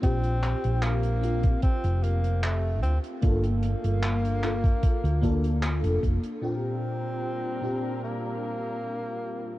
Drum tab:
HH |xxxxxxxxxxxxx-xx|xxxxxxxxxxxxxxxx|----------------|
CP |--x-x-------x---|----x-x-----x---|----------------|
BD |o------oo-------|o------oo-o---o-|----------------|